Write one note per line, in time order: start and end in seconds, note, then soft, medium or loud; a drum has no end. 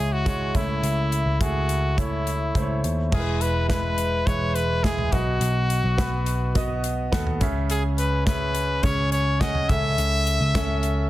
0.00 0.51 C#2 medium
0.00 0.55 C#3 medium
0.00 0.25 G#3 medium
0.00 0.26 E4 medium
0.00 0.14 G#4 medium
0.00 0.27 C#5 medium
0.13 0.57 F#4 medium
0.25 0.54 G#3 medium
0.25 0.53 E4 medium
0.25 0.54 C#5 medium
0.25 kick medium
0.25 closed hi-hat medium
0.54 0.81 C#2 medium
0.54 1.37 C#3 medium
0.54 1.28 A3 medium
0.54 1.28 E4 medium
0.54 1.43 E4 medium
0.54 1.28 C#5 medium
0.54 kick medium
0.54 closed hi-hat medium
0.83 1.23 C#2 medium
0.83 closed hi-hat medium
1.12 closed hi-hat medium
1.26 1.39 C#2 medium
1.40 1.89 A3 medium
1.40 1.89 E4 medium
1.40 1.98 F#4 medium
1.40 1.90 G#4 medium
1.40 kick medium
1.40 closed hi-hat medium
1.69 closed hi-hat medium
1.97 2.46 A3 medium
1.97 2.46 E4 medium
1.97 2.80 E4 medium
1.97 2.47 C#5 medium
1.97 kick medium
1.97 closed hi-hat medium
2.27 closed hi-hat medium
2.55 2.82 C#2 medium
2.55 3.03 A3 medium
2.55 3.04 E4 medium
2.55 2.62 C5 medium
2.55 kick medium
2.55 closed hi-hat medium
2.62 3.07 C#5 medium
2.83 3.10 D#2 medium
2.83 closed hi-hat medium
3.11 4.23 E1 medium
3.11 3.94 E3 soft
3.11 3.60 G#3 medium
3.11 3.61 E4 medium
3.11 3.43 G#4 medium
3.11 3.19 A#4 soft
3.11 kick loud
3.11 crash medium
3.19 3.64 B4 medium
3.41 3.69 B4 medium
3.41 closed hi-hat medium
3.68 4.17 G#3 medium
3.68 4.18 E4 medium
3.68 4.18 B4 medium
3.68 4.28 B4 medium
3.68 kick loud
3.68 snare medium
3.68 closed hi-hat medium
3.98 closed hi-hat medium
4.26 5.08 E1 medium
4.26 4.75 G#3 medium
4.26 4.75 E4 medium
4.26 4.76 B4 medium
4.26 4.57 C#5 medium
4.26 kick loud
4.26 closed hi-hat medium
4.55 4.85 B4 medium
4.55 closed hi-hat medium
4.84 5.12 G#3 medium
4.84 5.12 E4 medium
4.84 5.14 G#4 medium
4.84 5.13 G#4 medium
4.84 kick medium
4.84 snare medium
4.84 closed hi-hat medium
4.98 floor tom medium
5.12 5.39 B1 medium
5.12 5.94 B2 medium
5.12 5.85 B3 medium
5.12 6.84 F#4 medium
5.12 5.86 F#4 medium
5.12 5.86 D#5 medium
5.12 kick medium
5.12 closed hi-hat medium
5.41 5.81 B1 medium
5.41 closed hi-hat medium
5.70 closed hi-hat medium
5.84 5.97 B1 medium
5.98 6.46 B3 medium
5.98 6.47 F#4 medium
5.98 6.47 B4 medium
5.98 kick loud
5.98 snare loud
5.98 closed hi-hat medium
6.26 closed hi-hat medium
6.55 7.04 B3 medium
6.55 7.04 F#4 medium
6.55 7.04 D#5 medium
6.55 kick medium
6.55 closed hi-hat medium
6.84 closed hi-hat medium
7.12 7.39 D#2 medium
7.12 7.41 B3 medium
7.12 7.41 F#4 medium
7.12 7.41 A4 medium
7.12 kick medium
7.12 snare medium
7.12 closed hi-hat medium
7.27 floor tom medium
7.41 8.80 C#2 loud
7.41 8.23 C#3 medium
7.41 8.14 C#4 medium
7.41 8.14 G#4 medium
7.41 8.14 E5 medium
7.41 kick medium
7.41 closed hi-hat medium
7.70 7.84 G#4 medium
7.70 closed hi-hat medium
7.98 8.25 B4 medium
7.98 closed hi-hat medium
8.26 8.75 C#4 medium
8.26 8.75 G#4 medium
8.26 8.85 B4 medium
8.26 8.75 E5 medium
8.26 kick loud
8.26 snare loud
8.26 closed hi-hat medium
8.55 closed hi-hat medium
8.83 9.65 C#2 medium
8.83 9.32 C#4 medium
8.83 9.32 G#4 medium
8.83 9.11 C#5 medium
8.83 9.32 C#5 medium
8.83 kick loud
8.83 closed hi-hat medium
9.12 9.42 C#5 medium
9.12 closed hi-hat medium
9.40 9.67 C#4 medium
9.40 9.69 G#4 medium
9.40 9.71 D#5 medium
9.40 9.70 F#5 medium
9.40 kick medium
9.40 snare medium
9.40 closed hi-hat medium
9.55 floor tom medium
9.69 9.96 C#2 medium
9.69 10.51 C#3 medium
9.69 10.42 C#4 medium
9.69 10.42 A4 medium
9.69 11.10 E5 loud
9.69 10.43 E5 medium
9.69 kick loud
9.69 closed hi-hat medium
9.69 floor tom medium
9.98 10.38 C#2 loud
9.98 closed hi-hat medium
10.27 closed hi-hat medium
10.41 10.54 C#2 medium
10.54 11.10 C#2 loud
10.54 11.03 C#4 medium
10.54 11.04 A4 medium
10.54 11.04 E5 loud
10.54 kick loud
10.54 snare medium
10.54 closed hi-hat medium
10.83 closed hi-hat medium